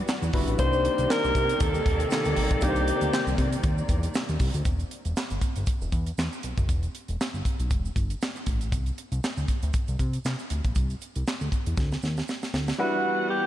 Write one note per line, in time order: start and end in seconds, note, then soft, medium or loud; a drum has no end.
0.00 0.55 E3 medium
0.00 0.29 G3 medium
0.00 0.55 G3 medium
0.00 0.55 B3 medium
0.00 0.29 D4 medium
0.00 0.30 E4 medium
0.00 0.30 F#4 medium
0.00 0.55 F#4 medium
0.00 0.30 A4 medium
0.08 snare loud
0.08 clap medium
0.08 shaker medium
0.22 0.30 E2 medium
0.22 closed hi-hat soft
0.22 shaker medium
0.33 0.44 G1 loud
0.33 0.59 G3 medium
0.33 0.57 D4 medium
0.33 0.59 E4 medium
0.33 0.59 F#4 medium
0.33 0.59 B4 medium
0.33 kick loud
0.33 open hi-hat medium
0.47 0.56 A1 medium
0.47 closed hi-hat soft
0.47 shaker medium
0.58 0.89 C2 loud
0.58 4.62 C3 medium
0.58 4.62 D#3 loud
0.58 4.62 G3 medium
0.58 2.58 A#3 medium
0.58 4.62 A#3 medium
0.58 2.58 D4 medium
0.58 2.58 D#4 medium
0.58 2.58 G4 medium
0.58 1.12 C5 loud
0.58 2.59 C5 medium
0.58 4.62 D5 medium
0.58 kick loud
0.58 closed hi-hat loud
0.58 shaker medium
0.73 shaker soft
0.85 closed hi-hat medium
0.98 1.07 C2 loud
0.98 closed hi-hat medium
0.98 shaker medium
1.10 1.63 A#4 loud
1.10 snare loud
1.10 clap medium
1.10 shaker medium
1.24 1.32 C2 medium
1.24 shaker medium
1.35 1.54 C3 loud
1.35 kick loud
1.35 closed hi-hat medium
1.35 shaker medium
1.49 closed hi-hat medium
1.49 shaker medium
1.60 1.80 D#2 medium
1.60 2.11 A4 loud
1.60 kick loud
1.60 closed hi-hat loud
1.60 shaker medium
1.74 closed hi-hat soft
1.74 shaker medium
1.86 2.05 D#2 loud
1.86 kick loud
1.86 closed hi-hat medium
2.00 closed hi-hat soft
2.00 shaker medium
2.10 2.65 A4 medium
2.10 snare loud
2.10 clap medium
2.10 shaker medium
2.25 2.34 D2 loud
2.25 closed hi-hat soft
2.25 shaker medium
2.36 2.47 A1 loud
2.36 open hi-hat medium
2.50 2.64 A#1 loud
2.50 kick loud
2.50 closed hi-hat soft
2.50 shaker soft
2.61 2.92 C2 loud
2.61 4.61 A#3 medium
2.61 4.61 D4 medium
2.61 4.62 D#4 medium
2.61 4.62 G4 medium
2.61 3.39 G4 medium
2.61 2.69 A#4 medium
2.61 kick loud
2.61 closed hi-hat loud
2.61 shaker medium
2.69 4.65 C5 medium
2.76 closed hi-hat soft
2.76 shaker soft
2.88 closed hi-hat medium
2.88 shaker medium
3.01 3.10 D2 medium
3.01 closed hi-hat soft
3.01 shaker medium
3.13 snare loud
3.13 clap loud
3.13 shaker medium
3.27 3.35 C2 loud
3.27 shaker medium
3.38 3.57 C3 loud
3.38 kick medium
3.38 closed hi-hat medium
3.38 shaker medium
3.52 closed hi-hat medium
3.52 shaker medium
3.63 3.83 D#2 medium
3.63 kick loud
3.63 closed hi-hat medium
3.63 shaker medium
3.78 shaker medium
3.89 4.08 E2 medium
3.89 kick medium
3.89 closed hi-hat medium
3.89 shaker medium
4.03 closed hi-hat soft
4.03 shaker soft
4.14 snare loud
4.14 clap medium
4.14 shaker medium
4.29 4.38 D#2 medium
4.29 closed hi-hat soft
4.29 shaker medium
4.40 4.51 C2 loud
4.40 kick loud
4.40 open hi-hat loud
4.40 shaker medium
4.54 4.63 D2 medium
4.54 closed hi-hat soft
4.54 shaker medium
4.65 4.84 E1 loud
4.65 kick loud
4.65 closed hi-hat medium
4.65 shaker medium
4.80 closed hi-hat soft
4.80 shaker soft
4.91 closed hi-hat medium
5.05 5.14 E1 medium
5.05 closed hi-hat soft
5.05 shaker medium
5.17 snare loud
5.17 clap medium
5.17 shaker medium
5.30 5.39 G1 medium
5.30 closed hi-hat soft
5.30 shaker soft
5.41 kick medium
5.41 closed hi-hat medium
5.41 shaker medium
5.56 5.65 G1 medium
5.56 closed hi-hat soft
5.56 shaker soft
5.66 kick loud
5.66 closed hi-hat medium
5.66 shaker medium
5.81 5.90 E1 loud
5.81 shaker soft
5.92 6.12 E2 loud
5.92 kick medium
5.92 closed hi-hat medium
5.92 shaker medium
6.06 closed hi-hat soft
6.06 shaker soft
6.18 6.29 E2 medium
6.18 snare loud
6.18 clap medium
6.18 shaker medium
6.33 shaker medium
6.43 6.54 B1 medium
6.43 closed hi-hat medium
6.43 shaker medium
6.58 6.70 F#1 medium
6.58 kick medium
6.58 closed hi-hat soft
6.58 shaker soft
6.69 6.88 E1 loud
6.69 kick loud
6.69 closed hi-hat medium
6.69 shaker medium
6.83 closed hi-hat soft
6.83 shaker soft
6.95 closed hi-hat medium
7.08 7.17 E1 loud
7.08 closed hi-hat soft
7.08 shaker medium
7.21 snare loud
7.21 clap medium
7.21 shaker medium
7.34 7.42 G1 medium
7.34 shaker soft
7.45 kick medium
7.45 closed hi-hat medium
7.45 shaker soft
7.60 7.72 B1 medium
7.60 closed hi-hat soft
7.60 shaker soft
7.70 7.90 E1 loud
7.70 kick loud
7.70 closed hi-hat medium
7.70 shaker medium
7.85 shaker medium
7.96 8.15 G1 medium
7.96 kick medium
7.96 closed hi-hat medium
7.96 shaker medium
8.10 closed hi-hat soft
8.10 shaker soft
8.21 snare loud
8.21 clap medium
8.21 shaker medium
8.36 closed hi-hat soft
8.36 shaker medium
8.46 8.74 A1 loud
8.46 kick medium
8.46 closed hi-hat medium
8.46 shaker soft
8.61 closed hi-hat soft
8.61 shaker soft
8.72 8.91 C2 loud
8.72 kick loud
8.72 closed hi-hat medium
8.72 shaker medium
8.86 closed hi-hat soft
8.86 shaker soft
8.98 closed hi-hat medium
9.12 9.20 C2 medium
9.12 closed hi-hat soft
9.12 shaker soft
9.24 snare loud
9.24 clap medium
9.24 shaker medium
9.37 9.46 D2 medium
9.37 shaker soft
9.48 kick medium
9.48 closed hi-hat medium
9.48 shaker soft
9.62 9.71 D2 loud
9.62 closed hi-hat soft
9.62 shaker soft
9.73 kick loud
9.73 closed hi-hat medium
9.73 shaker medium
9.88 9.97 C2 medium
9.88 closed hi-hat soft
9.88 shaker medium
9.99 10.19 C3 medium
9.99 kick medium
9.99 closed hi-hat medium
9.99 shaker medium
10.13 closed hi-hat soft
10.13 shaker soft
10.25 10.36 C3 loud
10.25 snare loud
10.25 clap medium
10.25 shaker medium
10.39 closed hi-hat soft
10.39 shaker medium
10.50 10.61 D2 loud
10.50 closed hi-hat medium
10.50 shaker medium
10.64 10.73 A#1 medium
10.64 kick medium
10.64 closed hi-hat soft
10.64 shaker soft
10.75 10.95 C2 loud
10.75 kick loud
10.75 closed hi-hat medium
10.75 shaker medium
10.90 closed hi-hat soft
10.90 shaker soft
11.01 closed hi-hat medium
11.01 shaker soft
11.16 11.24 C2 loud
11.16 closed hi-hat soft
11.16 shaker soft
11.27 snare loud
11.27 clap medium
11.27 shaker medium
11.41 11.49 D2 medium
11.41 shaker soft
11.52 kick medium
11.52 closed hi-hat medium
11.52 shaker soft
11.66 11.75 E2 medium
11.66 closed hi-hat soft
11.66 shaker medium
11.77 11.97 D2 medium
11.77 kick loud
11.77 snare medium
11.77 shaker medium
11.92 snare soft
11.92 shaker soft
12.02 12.22 D#2 medium
12.02 snare medium
12.02 shaker medium
12.17 snare medium
12.17 shaker soft
12.28 snare medium
12.28 shaker medium
12.43 snare medium
12.43 shaker medium
12.54 12.73 D2 medium
12.54 snare medium
12.54 shaker soft
12.68 snare medium
12.68 shaker soft
12.78 13.46 E3 medium
12.78 13.46 G3 medium
12.78 13.46 B3 medium
12.78 13.46 D4 medium
12.78 13.46 E4 medium
12.78 13.27 F#4 medium
12.78 13.46 B4 medium
12.78 13.46 F#5 medium
13.30 13.46 G4 loud